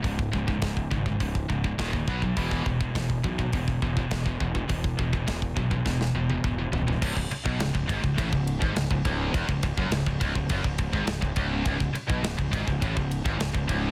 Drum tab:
CC |----------------|----------------|----------------|x---------------|
RD |----------------|----------------|----------------|--x-x-x-x-x-x-x-|
HH |o---o---o---o---|o---o---o---o---|o---o-----------|----------------|
SD |----o-------o---|----o-------o---|----o---oo------|----o-------o---|
T1 |----------------|----------------|-----------o----|----------------|
T2 |----------------|----------------|------------o---|----------------|
FT |----------------|----------------|--------------oo|----------------|
BD |oooooooooooooooo|oooooooooooooooo|ooooooooo---o---|oo-o-ooooo-o-oo-|

CC |----------------|----------------|
RD |x-x-x-x-x-x-x-x-|x-x-x-x-x-x-x-x-|
HH |----------------|----------------|
SD |----o-------o---|----o-------o---|
T1 |----------------|----------------|
T2 |----------------|----------------|
FT |----------------|----------------|
BD |oooo-ooooooo-oo-|oo-o-ooooo-o-oo-|